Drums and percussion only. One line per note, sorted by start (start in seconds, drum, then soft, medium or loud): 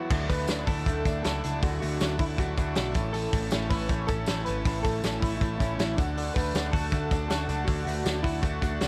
0.10 kick loud
0.10 crash loud
0.10 tambourine soft
0.30 kick medium
0.30 hi-hat pedal medium
0.30 open hi-hat medium
0.30 tambourine soft
0.48 snare loud
0.48 hi-hat pedal medium
0.48 open hi-hat medium
0.48 tambourine loud
0.67 kick medium
0.67 hi-hat pedal medium
0.67 open hi-hat medium
0.86 kick loud
0.86 hi-hat pedal medium
0.86 open hi-hat medium
0.86 tambourine soft
1.05 kick medium
1.05 hi-hat pedal medium
1.05 open hi-hat medium
1.05 tambourine medium
1.24 snare loud
1.24 hi-hat pedal medium
1.24 open hi-hat medium
1.24 tambourine medium
1.44 hi-hat pedal medium
1.44 open hi-hat medium
1.44 tambourine medium
1.62 kick loud
1.62 hi-hat pedal medium
1.62 open hi-hat medium
1.62 tambourine soft
1.82 hi-hat pedal medium
1.82 open hi-hat medium
1.82 tambourine soft
2.01 snare loud
2.01 hi-hat pedal medium
2.01 open hi-hat medium
2.01 tambourine loud
2.19 kick loud
2.19 hi-hat pedal medium
2.19 open hi-hat medium
2.38 kick loud
2.38 hi-hat pedal medium
2.38 open hi-hat medium
2.38 tambourine soft
2.57 kick medium
2.57 hi-hat pedal medium
2.57 open hi-hat medium
2.57 tambourine medium
2.75 snare loud
2.75 hi-hat pedal medium
2.75 open hi-hat medium
2.75 tambourine medium
2.94 kick loud
2.94 hi-hat pedal medium
2.94 open hi-hat medium
2.94 tambourine medium
3.14 hi-hat pedal medium
3.14 open hi-hat medium
3.14 tambourine soft
3.32 kick loud
3.32 hi-hat pedal medium
3.32 open hi-hat medium
3.32 tambourine medium
3.51 snare loud
3.51 hi-hat pedal medium
3.51 open hi-hat medium
3.51 tambourine loud
3.71 kick loud
3.71 hi-hat pedal medium
3.71 open hi-hat medium
3.89 kick loud
3.89 hi-hat pedal medium
3.89 open hi-hat medium
4.08 kick medium
4.08 hi-hat pedal medium
4.08 open hi-hat medium
4.08 tambourine medium
4.26 snare loud
4.26 hi-hat pedal medium
4.26 open hi-hat medium
4.26 tambourine loud
4.46 hi-hat pedal medium
4.46 open hi-hat medium
4.46 tambourine medium
4.65 kick loud
4.65 hi-hat pedal medium
4.65 open hi-hat medium
4.65 tambourine soft
4.84 kick medium
4.84 hi-hat pedal medium
4.84 open hi-hat medium
4.84 tambourine soft
5.04 snare loud
5.04 hi-hat pedal medium
5.04 open hi-hat medium
5.04 tambourine loud
5.22 kick medium
5.22 hi-hat pedal medium
5.22 open hi-hat medium
5.22 tambourine soft
5.41 kick loud
5.41 hi-hat pedal medium
5.41 open hi-hat medium
5.60 kick medium
5.60 hi-hat pedal medium
5.60 open hi-hat medium
5.60 tambourine medium
5.79 snare loud
5.79 hi-hat pedal medium
5.79 open hi-hat medium
5.79 tambourine medium
5.98 kick loud
5.98 hi-hat pedal medium
5.98 open hi-hat medium
5.98 tambourine medium
6.17 hi-hat pedal medium
6.17 open hi-hat medium
6.17 tambourine soft
6.36 kick loud
6.36 hi-hat pedal medium
6.36 open hi-hat medium
6.36 tambourine soft
6.55 snare loud
6.55 hi-hat pedal medium
6.55 open hi-hat medium
6.55 tambourine loud
6.73 kick medium
6.73 hi-hat pedal medium
6.73 open hi-hat medium
6.73 tambourine soft
6.92 kick loud
6.92 hi-hat pedal medium
6.92 open hi-hat medium
6.92 tambourine soft
7.11 kick loud
7.11 hi-hat pedal medium
7.11 open hi-hat medium
7.11 tambourine medium
7.30 snare loud
7.30 hi-hat pedal medium
7.30 open hi-hat medium
7.30 tambourine medium
7.49 hi-hat pedal medium
7.49 open hi-hat medium
7.49 tambourine medium
7.67 kick loud
7.67 hi-hat pedal medium
7.67 open hi-hat medium
7.67 tambourine soft
7.86 hi-hat pedal medium
7.86 open hi-hat medium
7.86 tambourine medium
8.05 snare loud
8.05 hi-hat pedal medium
8.05 open hi-hat medium
8.05 tambourine loud
8.24 kick medium
8.24 hi-hat pedal medium
8.24 open hi-hat medium
8.43 kick loud
8.43 hi-hat pedal medium
8.43 open hi-hat medium
8.43 tambourine soft
8.62 kick medium
8.62 hi-hat pedal medium
8.62 open hi-hat medium
8.62 tambourine medium
8.80 snare loud
8.80 hi-hat pedal medium
8.80 open hi-hat medium
8.80 tambourine loud